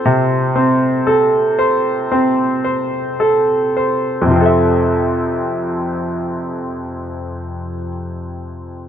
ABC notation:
X:1
M:4/4
L:1/8
Q:1/4=53
K:F
V:1 name="Grand piano"
[C,Ac] C A c C c A c | [F,,C,F,CAe]8 |]